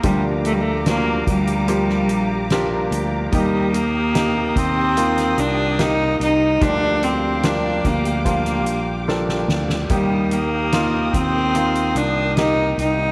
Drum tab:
HH |x-x-x-xxx-x-x-x-|x-x-x-x-xxx-x-x-|x-x-x-xxxxx-----|x-x-x-x-xxx-x-x-|
SD |----o----o--o---|----o----o--o---|----o----o--oooo|----o-------o---|
BD |o-----o---------|o-----o---------|o-----o-o-------|o-----o---------|